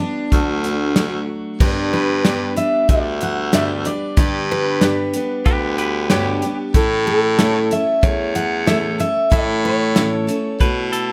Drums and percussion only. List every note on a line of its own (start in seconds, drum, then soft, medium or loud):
0.32 kick medium
0.32 closed hi-hat medium
0.64 closed hi-hat medium
0.96 snare loud
0.96 closed hi-hat medium
1.60 kick loud
1.60 crash medium
2.25 snare loud
2.25 closed hi-hat medium
2.57 closed hi-hat medium
2.89 kick medium
2.89 closed hi-hat medium
3.21 closed hi-hat medium
3.53 snare loud
3.53 closed hi-hat medium
3.85 closed hi-hat medium
4.17 kick loud
4.17 closed hi-hat medium
4.81 snare loud
4.81 closed hi-hat medium
5.14 closed hi-hat medium
5.46 kick loud
5.46 closed hi-hat medium
5.78 closed hi-hat medium
6.10 snare loud
6.10 closed hi-hat medium
6.42 closed hi-hat medium
6.74 kick loud
6.74 closed hi-hat medium
7.39 snare loud
7.39 closed hi-hat medium
7.71 closed hi-hat medium
8.03 kick loud
8.03 closed hi-hat medium
8.35 closed hi-hat medium
8.67 snare loud
8.67 closed hi-hat medium
9.00 closed hi-hat medium
9.32 kick loud
9.32 closed hi-hat medium
9.96 snare loud
9.96 closed hi-hat medium
10.29 closed hi-hat medium
10.60 kick medium
10.60 closed hi-hat medium
10.93 closed hi-hat medium